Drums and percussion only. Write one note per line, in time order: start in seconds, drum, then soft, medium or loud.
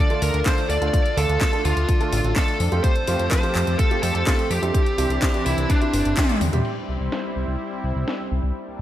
0.10 closed hi-hat soft
0.22 open hi-hat loud
0.34 closed hi-hat soft
0.46 kick loud
0.46 snare loud
0.46 clap medium
0.46 closed hi-hat medium
0.58 closed hi-hat soft
0.70 open hi-hat medium
0.82 closed hi-hat soft
0.93 kick loud
0.93 closed hi-hat medium
1.06 closed hi-hat soft
1.18 open hi-hat loud
1.29 closed hi-hat soft
1.41 kick loud
1.41 snare loud
1.41 clap medium
1.41 closed hi-hat loud
1.53 closed hi-hat soft
1.65 open hi-hat loud
1.77 closed hi-hat soft
1.89 kick loud
1.89 closed hi-hat medium
2.01 closed hi-hat soft
2.13 open hi-hat loud
2.24 closed hi-hat soft
2.36 kick loud
2.36 snare loud
2.36 clap medium
2.36 closed hi-hat medium
2.48 closed hi-hat soft
2.60 open hi-hat medium
2.72 closed hi-hat soft
2.84 kick loud
2.84 closed hi-hat medium
2.96 closed hi-hat soft
3.07 open hi-hat loud
3.19 closed hi-hat soft
3.31 kick loud
3.31 snare loud
3.31 clap medium
3.31 closed hi-hat loud
3.43 closed hi-hat soft
3.55 clap medium
3.55 open hi-hat medium
3.67 closed hi-hat soft
3.79 kick loud
3.79 closed hi-hat medium
3.91 closed hi-hat soft
4.03 open hi-hat loud
4.15 closed hi-hat soft
4.27 kick loud
4.27 snare loud
4.27 clap medium
4.27 closed hi-hat loud
4.39 closed hi-hat soft
4.51 open hi-hat loud
4.63 closed hi-hat soft
4.74 kick loud
4.74 closed hi-hat loud
4.86 closed hi-hat soft
4.98 open hi-hat loud
5.10 closed hi-hat soft
5.22 kick loud
5.22 snare loud
5.22 clap medium
5.22 closed hi-hat loud
5.34 closed hi-hat soft
5.46 open hi-hat loud
5.58 closed hi-hat soft
5.70 kick loud
5.70 closed hi-hat loud
5.82 closed hi-hat soft
5.93 open hi-hat loud
6.05 closed hi-hat soft
6.17 kick loud
6.17 snare loud
6.17 clap medium
6.17 closed hi-hat loud
6.29 closed hi-hat soft
6.41 open hi-hat medium
6.41 high tom medium
6.53 closed hi-hat soft
6.53 mid tom medium
6.65 crash medium
7.12 snare loud
8.08 snare loud